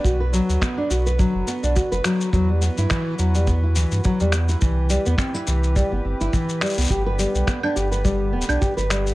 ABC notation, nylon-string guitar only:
X:1
M:4/4
L:1/16
Q:"Swing 16ths" 1/4=105
K:G
V:1 name="Nylon-string guitar"
F B F,2 B, D F B F,2 B, D F B F,2 | F, G, B, E E,2 F, G, B, E E,2 F, G, B, E | E,2 G, B, C E E,2 G, B, C E E,2 G, B, | G B G,2 B, D G B G,2 B, D G B G,2 |]